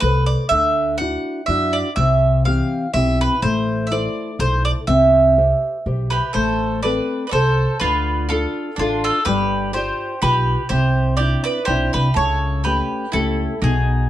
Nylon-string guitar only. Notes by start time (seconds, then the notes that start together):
0.03 A4 B4 C5
0.52 D3
1.00 D4 E4 F#4
1.48 D4 E4 F#4
1.98 C3
2.47 E3 C4 G4
2.95 C4 E4 G4
3.44 A3
3.91 E4 A4 C5
4.40 E4 A4 C5
4.89 C4
5.38 G4 C5 E5
5.86 G4 C5 E5
6.36 A3
6.84 C4 A4 B4
7.35 A4 C5
7.83 D3
8.31 D4 F4 A4
8.80 D4 F4 A4
9.28 G3
9.75 F4 G4 D5
10.23 F4 G4 B4
10.71 C3
11.19 C4 D4 E4
11.68 C4 D4 E4
12.17 C#3
12.66 A3 C#4 G4
13.14 A3 C#4 G4
13.63 B2